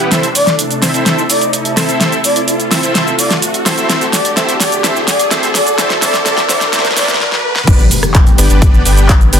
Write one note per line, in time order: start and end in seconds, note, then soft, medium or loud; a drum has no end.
0.00 riser medium
0.12 3.86 C3 medium
0.12 7.64 A3 medium
0.12 0.28 C4 medium
0.12 0.28 E4 medium
0.12 3.86 E4 medium
0.12 0.28 A4 medium
0.12 3.86 A4 medium
0.12 0.28 C5 medium
0.12 0.28 E5 loud
0.12 snare soft
0.12 closed hi-hat medium
0.12 cabasa soft
0.23 closed hi-hat soft
0.23 cabasa soft
0.35 0.48 D5 medium
0.35 open hi-hat loud
0.35 cabasa medium
0.47 snare soft
0.47 closed hi-hat soft
0.47 cabasa soft
0.59 closed hi-hat medium
0.59 cabasa soft
0.71 closed hi-hat soft
0.71 cabasa soft
0.82 0.92 C4 medium
0.82 0.92 E4 medium
0.82 0.92 A4 medium
0.82 0.92 C5 medium
0.82 0.92 E5 medium
0.82 snare medium
0.82 open hi-hat loud
0.82 cabasa medium
0.94 1.04 C4 medium
0.94 1.04 E4 medium
0.94 1.04 A4 medium
0.94 1.04 C5 medium
0.94 1.04 E5 medium
0.94 closed hi-hat soft
0.94 cabasa soft
1.06 1.22 C4 medium
1.06 1.22 E4 medium
1.06 1.22 A4 medium
1.06 1.22 C5 medium
1.06 1.22 E5 loud
1.06 snare medium
1.06 closed hi-hat medium
1.06 cabasa soft
1.18 cabasa soft
1.30 1.43 D5 medium
1.30 open hi-hat loud
1.30 cabasa medium
1.41 closed hi-hat soft
1.41 cabasa soft
1.53 closed hi-hat medium
1.53 cabasa soft
1.65 closed hi-hat soft
1.65 cabasa soft
1.77 1.87 C4 medium
1.77 1.87 E4 medium
1.77 1.87 A4 medium
1.77 1.87 C5 medium
1.77 1.87 E5 medium
1.77 snare medium
1.77 open hi-hat loud
1.77 cabasa medium
1.89 1.99 C4 medium
1.89 1.99 E4 medium
1.89 1.99 A4 medium
1.89 1.99 C5 medium
1.89 1.99 E5 medium
1.89 closed hi-hat soft
1.89 cabasa soft
2.01 2.17 C4 medium
2.01 2.17 E4 medium
2.01 2.17 A4 medium
2.01 2.17 C5 medium
2.01 2.17 E5 loud
2.01 snare medium
2.01 closed hi-hat medium
2.01 cabasa soft
2.12 closed hi-hat soft
2.12 cabasa soft
2.24 2.37 D5 medium
2.24 open hi-hat loud
2.24 cabasa medium
2.36 closed hi-hat medium
2.36 cabasa soft
2.48 closed hi-hat medium
2.48 cabasa soft
2.60 closed hi-hat soft
2.60 cabasa soft
2.71 2.81 C4 medium
2.71 2.81 E4 medium
2.71 2.81 A4 medium
2.71 2.81 C5 medium
2.71 2.81 E5 medium
2.71 snare medium
2.71 open hi-hat loud
2.71 cabasa medium
2.83 2.93 C4 medium
2.83 2.93 E4 medium
2.83 2.93 A4 medium
2.83 2.93 C5 medium
2.83 2.93 E5 medium
2.83 closed hi-hat medium
2.83 cabasa soft
2.95 3.11 C4 medium
2.95 3.11 E4 medium
2.95 3.11 A4 medium
2.95 3.11 C5 medium
2.95 3.11 E5 loud
2.95 snare medium
2.95 closed hi-hat medium
2.95 cabasa soft
3.07 cabasa soft
3.19 3.32 D5 medium
3.19 open hi-hat loud
3.19 cabasa medium
3.31 snare medium
3.31 closed hi-hat soft
3.31 cabasa soft
3.42 closed hi-hat medium
3.42 cabasa soft
3.54 closed hi-hat soft
3.54 cabasa soft
3.66 3.76 C4 medium
3.66 3.76 E4 medium
3.66 3.76 A4 medium
3.66 3.76 C5 medium
3.66 3.76 E5 medium
3.66 snare medium
3.66 open hi-hat loud
3.66 cabasa medium
3.78 3.88 C4 medium
3.78 3.88 E4 medium
3.78 3.88 A4 medium
3.78 3.88 C5 medium
3.78 3.88 E5 medium
3.78 closed hi-hat medium
3.78 cabasa soft
3.89 7.64 D3 medium
3.89 4.06 C4 loud
3.89 4.06 E4 medium
3.89 7.64 F#4 medium
3.89 7.64 A4 medium
3.89 4.06 A4 medium
3.89 4.06 C5 medium
3.89 4.06 E5 loud
3.89 snare medium
3.89 closed hi-hat medium
3.89 cabasa soft
4.01 closed hi-hat soft
4.01 cabasa soft
4.13 4.26 D5 medium
4.13 snare medium
4.13 open hi-hat loud
4.13 cabasa medium
4.25 closed hi-hat medium
4.25 cabasa soft
4.37 4.53 C4 loud
4.37 4.53 E4 medium
4.37 4.53 A4 medium
4.37 4.53 C5 medium
4.37 4.53 E5 loud
4.37 snare medium
4.37 closed hi-hat medium
4.37 cabasa soft
4.49 closed hi-hat soft
4.49 cabasa soft
4.60 4.73 D5 medium
4.60 snare medium
4.60 open hi-hat loud
4.60 cabasa medium
4.72 closed hi-hat medium
4.72 cabasa soft
4.84 5.00 C4 loud
4.84 5.00 E4 medium
4.84 5.00 A4 medium
4.84 5.00 C5 medium
4.84 5.00 E5 loud
4.84 snare medium
4.84 closed hi-hat medium
4.84 cabasa soft
4.96 cabasa soft
5.08 5.21 D5 loud
5.08 snare medium
5.08 open hi-hat loud
5.08 cabasa medium
5.19 closed hi-hat medium
5.19 cabasa soft
5.31 5.48 C4 loud
5.31 5.48 E4 medium
5.31 5.47 A4 medium
5.31 5.48 C5 medium
5.31 5.48 E5 loud
5.31 snare medium
5.31 closed hi-hat medium
5.31 cabasa soft
5.43 closed hi-hat soft
5.43 cabasa soft
5.55 5.68 D5 loud
5.55 snare medium
5.55 open hi-hat loud
5.55 cabasa medium
5.67 closed hi-hat medium
5.67 cabasa soft
5.78 5.95 C4 loud
5.78 5.95 E4 medium
5.78 5.95 A4 medium
5.78 5.95 C5 loud
5.78 5.92 D5 medium
5.78 5.95 E5 loud
5.78 snare medium
5.78 closed hi-hat medium
5.78 cabasa soft
5.90 snare medium
5.90 closed hi-hat soft
5.90 cabasa soft
6.02 6.18 C4 loud
6.02 6.18 E4 medium
6.02 6.18 A4 medium
6.02 6.18 C5 medium
6.02 6.15 D5 medium
6.02 6.18 E5 loud
6.02 snare medium
6.02 open hi-hat loud
6.02 cabasa medium
6.14 snare medium
6.14 closed hi-hat medium
6.14 cabasa soft
6.26 6.42 C4 loud
6.26 6.42 E4 medium
6.26 6.42 A4 medium
6.26 6.42 C5 medium
6.26 6.39 D5 loud
6.26 6.42 E5 loud
6.26 snare loud
6.26 closed hi-hat medium
6.26 cabasa soft
6.37 snare medium
6.37 closed hi-hat soft
6.37 cabasa soft
6.49 6.66 C4 loud
6.49 6.66 E4 medium
6.49 6.66 A4 medium
6.49 6.66 C5 medium
6.49 6.62 D5 loud
6.49 6.66 E5 loud
6.49 snare loud
6.49 open hi-hat loud
6.49 cabasa medium
6.61 snare medium
6.61 closed hi-hat medium
6.61 cabasa soft
6.73 6.89 C4 loud
6.73 6.89 E4 loud
6.73 6.89 A4 loud
6.73 6.89 C5 medium
6.73 6.86 D5 medium
6.73 6.89 E5 loud
6.73 snare loud
6.73 closed hi-hat medium
6.73 cabasa soft
6.79 snare medium
6.85 snare medium
6.85 closed hi-hat soft
6.85 cabasa soft
6.91 snare medium
6.97 7.13 C4 loud
6.97 7.13 E4 loud
6.97 7.13 A4 medium
6.97 7.13 C5 loud
6.97 7.10 D5 loud
6.97 7.13 E5 loud
6.97 snare loud
6.97 open hi-hat loud
6.97 cabasa medium
7.02 snare medium
7.08 snare loud
7.08 closed hi-hat medium
7.08 cabasa soft
7.14 snare loud
7.20 snare medium
7.32 snare medium
7.56 snare medium
7.67 7.81 G1 medium
7.67 9.40 D3 medium
7.67 9.40 G3 medium
7.67 9.40 B3 medium
7.67 7.84 B3 loud
7.67 7.84 D4 medium
7.67 9.40 G4 medium
7.67 7.84 G4 medium
7.67 7.84 B4 medium
7.67 7.84 D5 loud
7.67 kick loud
7.67 closed hi-hat medium
7.67 crash loud
7.67 impact medium
7.67 cabasa soft
7.79 closed hi-hat soft
7.79 cabasa soft
7.91 open hi-hat loud
7.91 cabasa medium
8.03 cross-stick medium
8.03 closed hi-hat medium
8.03 cabasa soft
8.14 kick loud
8.14 clap loud
8.14 closed hi-hat medium
8.14 cabasa soft
8.26 closed hi-hat soft
8.26 cabasa soft
8.38 8.48 G1 loud
8.38 8.48 B3 medium
8.38 8.48 D4 medium
8.38 8.48 G4 medium
8.38 8.48 B4 medium
8.38 8.48 D5 medium
8.38 open hi-hat loud
8.38 cabasa medium
8.50 8.83 G1 medium
8.50 8.83 B3 medium
8.50 8.83 D4 medium
8.50 8.83 G4 medium
8.50 8.83 B4 medium
8.50 8.83 D5 medium
8.50 closed hi-hat medium
8.50 cabasa soft
8.62 kick loud
8.62 closed hi-hat medium
8.62 cabasa soft
8.74 cabasa soft
8.85 9.30 G1 loud
8.85 9.12 B3 medium
8.85 9.12 D4 medium
8.85 9.12 G4 medium
8.85 9.12 B4 medium
8.85 9.12 G5 medium
8.85 open hi-hat loud
8.85 cabasa medium
8.97 closed hi-hat medium
8.97 cabasa soft
9.09 kick loud
9.09 clap loud
9.09 closed hi-hat medium
9.09 cabasa soft
9.21 closed hi-hat soft
9.21 cabasa soft
9.33 9.40 G1 loud
9.33 9.40 B3 medium
9.33 9.40 D4 medium
9.33 9.40 G4 medium
9.33 9.40 B4 medium
9.33 9.40 G5 loud
9.33 open hi-hat loud
9.33 cabasa medium